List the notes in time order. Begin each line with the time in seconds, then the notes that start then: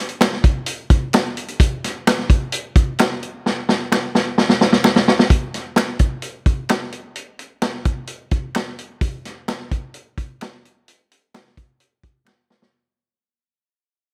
0.09 closed hi-hat
0.21 finger snap, snare, closed hi-hat
0.33 snare
0.44 kick, closed hi-hat
0.66 closed hi-hat
0.90 kick, closed hi-hat
1.13 finger snap, snare, closed hi-hat
1.37 closed hi-hat
1.48 closed hi-hat
1.60 kick, closed hi-hat
1.84 snare, closed hi-hat
2.07 finger snap, snare, closed hi-hat
2.19 snare
2.30 kick, closed hi-hat
2.52 closed hi-hat
2.76 kick, closed hi-hat
2.98 finger snap, snare, closed hi-hat
3.23 closed hi-hat
3.46 snare
3.69 snare
3.92 finger snap, snare
4.15 snare
4.38 snare
4.49 snare
4.61 snare
4.73 snare
4.84 finger snap, snare
4.96 snare
5.08 snare
5.19 snare
5.30 kick, closed hi-hat
5.54 snare, closed hi-hat
5.76 finger snap, snare, closed hi-hat
5.99 kick, closed hi-hat
6.22 closed hi-hat
6.46 kick, closed hi-hat
6.69 finger snap, snare, closed hi-hat
6.92 closed hi-hat
7.16 closed hi-hat
7.39 closed hi-hat
7.62 finger snap, snare, closed hi-hat
7.85 kick, closed hi-hat
8.07 closed hi-hat
8.31 kick, closed hi-hat
8.54 finger snap, snare, closed hi-hat
8.78 closed hi-hat
9.01 kick, closed hi-hat
9.25 snare, closed hi-hat
9.48 finger snap, snare, closed hi-hat
9.71 kick, closed hi-hat
9.94 closed hi-hat
10.18 kick, closed hi-hat
10.41 finger snap, snare, closed hi-hat
10.65 closed hi-hat
10.88 closed hi-hat
11.11 closed hi-hat
11.34 finger snap, snare, closed hi-hat
11.46 snare
11.57 kick, closed hi-hat
11.80 closed hi-hat
12.03 kick, closed hi-hat
12.27 finger snap, snare
12.50 snare
12.62 snare